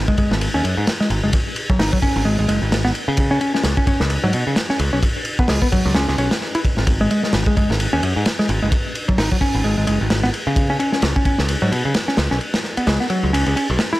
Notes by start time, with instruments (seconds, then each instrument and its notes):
0.08 picked electric bass G#3, kick
0.18 picked electric bass G#3, kick, ride
0.31 picked electric bass G#1, snare
0.41 ride
0.54 picked electric bass D#2 C#4
0.64 picked electric bass F#2, ride
0.77 picked electric bass G#2
0.87 snare, ride
1.00 picked electric bass G#3, snare
1.10 picked electric bass G#1, ride
1.23 picked electric bass F#1 G#3
1.33 kick, ride
1.56 ride
1.70 picked electric bass F#3, muted picked electric bass stroke, kick
1.79 picked electric bass G#1 D#4, snare, open hi-hat
1.93 picked electric bass F#3, kick
2.02 picked electric bass C#4, kick, ride
2.16 picked electric bass G#1
2.25 picked electric bass G#1 G#3
2.39 picked electric bass G#1 G#3
2.48 picked electric bass F#1 G#3, ride
2.62 picked electric bass G#1
2.72 snare, ride
2.85 picked electric bass B3, snare
2.95 ride
3.08 picked electric bass C#3
3.17 kick, ride
3.31 picked electric bass C#4
3.41 picked electric bass C#4, ride
3.54 picked electric bass C#4, snare
3.64 picked electric bass C#2, snare, ride
3.77 picked electric bass C#4, kick
3.87 picked electric bass C#4, kick, ride
4.00 picked electric bass C#2, snare
4.10 ride
4.24 picked electric bass G#2 F#3
4.33 picked electric bass B2, ride
4.47 picked electric bass C#3
4.56 snare, ride
4.69 picked electric bass C#4, snare
4.79 picked electric bass C#2, ride
4.93 picked electric bass B1 C#4
5.03 kick, ride
5.25 ride
5.39 picked electric bass B3, muted picked electric bass stroke, kick
5.48 picked electric bass C#2 G#3, snare, open hi-hat
5.62 picked electric bass B3, kick
5.72 picked electric bass F#3, kick, ride
5.86 picked electric bass C#2
5.95 picked electric bass C#2 C#4, snare, ride
6.08 picked electric bass C#2 C#4, snare
6.18 picked electric bass B1 C#4, ride
6.31 snare, ride
6.41 snare
6.55 picked electric bass E4, ride
6.65 kick, ride
6.77 picked electric bass G#1, snare
6.87 kick, ride
7.01 picked electric bass G#3
7.11 picked electric bass G#3, ride
7.23 picked electric bass G#3, snare
7.33 picked electric bass G#1, snare, ride
7.46 picked electric bass G#3, kick
7.57 picked electric bass G#3, kick, ride
7.70 picked electric bass G#1, snare
7.80 ride
7.93 picked electric bass D#2 C#4
8.03 picked electric bass F#2, ride
8.16 picked electric bass G#2
8.26 snare, ride
8.39 picked electric bass G#3, snare
8.49 picked electric bass G#1, ride
8.62 picked electric bass F#1 G#3
8.72 kick, ride
8.95 ride
9.08 picked electric bass F#3, muted picked electric bass stroke, kick
9.18 picked electric bass G#1 D#4, snare, open hi-hat
9.31 picked electric bass F#3, kick
9.41 picked electric bass C#4, kick, ride
9.54 picked electric bass G#1
9.64 picked electric bass G#1 G#3
9.78 picked electric bass G#1 G#3
9.87 picked electric bass F#1 G#3, ride
10.01 picked electric bass G#1
10.10 snare, ride
10.23 picked electric bass B3, snare
10.34 ride
10.47 picked electric bass C#3
10.56 kick, ride
10.70 picked electric bass C#4
10.79 picked electric bass C#4, ride
10.92 picked electric bass C#4, snare
11.02 picked electric bass C#2, snare, ride
11.16 picked electric bass C#4, kick
11.25 picked electric bass C#4, kick, ride
11.38 picked electric bass C#2, snare
11.48 ride
11.62 picked electric bass G#2 F#3
11.72 picked electric bass B2, ride
11.85 picked electric bass C#3
11.94 snare, ride
12.08 picked electric bass C#4, snare
12.17 picked electric bass C#2, snare, ride
12.31 picked electric bass B1 C#4, snare
12.41 ride
12.54 snare, ride
12.64 snare
12.77 picked electric bass B3, muted picked electric bass stroke, ride
12.87 picked electric bass C#2 G#3, snare, ride
13.00 picked electric bass B3, snare
13.10 picked electric bass F#3, ride
13.23 picked electric bass C#2
13.33 picked electric bass C#2 C#4, ride
13.46 picked electric bass C#2 C#4, ride
13.56 picked electric bass C#4, ride
13.70 picked electric bass B1
13.79 snare, ride
13.93 picked electric bass E4, snare